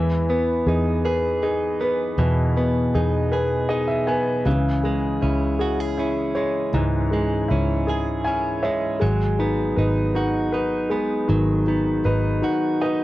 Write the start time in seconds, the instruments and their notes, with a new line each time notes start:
Already playing: fingered electric bass E2, grand piano E3, clean electric guitar E3 G#3 G#4
0.29 grand piano B3, clean electric guitar B3
0.66 fingered electric bass E2, clean electric guitar D#4, grand piano G#4
1.05 clean electric guitar G#4, grand piano B4
1.43 clean electric guitar D#4, grand piano G#4
1.81 clean electric guitar B3, grand piano B4
2.18 fingered electric bass E2, grand piano B2, clean electric guitar E3
2.57 grand piano B3, clean electric guitar B3
2.95 fingered electric bass E2, clean electric guitar D#4, grand piano G#4
3.32 clean electric guitar G#4, grand piano B4
3.69 clean electric guitar D#4, grand piano G#4 D#5
3.88 grand piano E5
4.07 clean electric guitar B3, grand piano B4 G#5
4.45 fingered electric bass C#2, grand piano C#3, clean electric guitar E3
4.84 grand piano G#3, clean electric guitar G#3
5.21 fingered electric bass C#2, clean electric guitar C#4, grand piano E4
5.59 clean electric guitar F#4, grand piano G#4
5.80 clean electric guitar G#4
5.97 clean electric guitar C#4, grand piano E4
6.35 clean electric guitar G#3, grand piano C#5
6.73 fingered electric bass C#2, grand piano G#2, clean electric guitar E3
7.11 grand piano G#3, clean electric guitar G#3
7.48 fingered electric bass C#2, clean electric guitar C#4, grand piano E4
7.87 grand piano G#4, clean electric guitar G#4
8.24 clean electric guitar C#4, grand piano E4 G#5
8.63 clean electric guitar G#3, grand piano C#5 E5
9.00 fingered electric bass G#1, clean electric guitar F#3, grand piano G#3
9.39 clean electric guitar B3, grand piano D#4
9.76 fingered electric bass G#1, clean electric guitar D#4, grand piano B4
10.15 grand piano D#4, clean electric guitar F#4
10.52 clean electric guitar D#4, grand piano B4
10.90 grand piano G#3, clean electric guitar B3
11.28 fingered electric bass G#1, grand piano D#3, clean electric guitar F#3
11.67 clean electric guitar B3, grand piano D#4
12.05 fingered electric bass G#1, clean electric guitar D#4, grand piano B4
12.42 grand piano D#4, clean electric guitar F#4
12.81 clean electric guitar D#4, grand piano B4 D#5